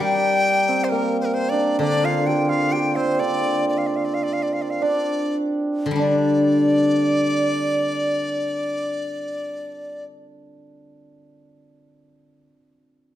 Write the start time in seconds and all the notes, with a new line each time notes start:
Already playing: A#3 C4 D4 A#4
0.00 G3 G4 G5
0.69 C4
0.84 C5
0.89 A#3 A#4
1.20 C5
1.25 A#4
1.34 C5
1.49 D4 D5
1.79 D3 D4 D5
2.04 F4 F5
2.27 G4 G5
2.49 F4 F5
2.72 G4 G5
2.96 C4 C5
3.19 D4 D5
3.69 D5
3.78 F5
3.87 D5
3.96 F5
4.05 D5
4.14 F5
4.23 D5
4.33 F5
4.43 D5
4.53 F5
4.62 D5
4.70 F5
4.82 D4 D5
5.86 D3
5.91 G3
5.96 D4 D5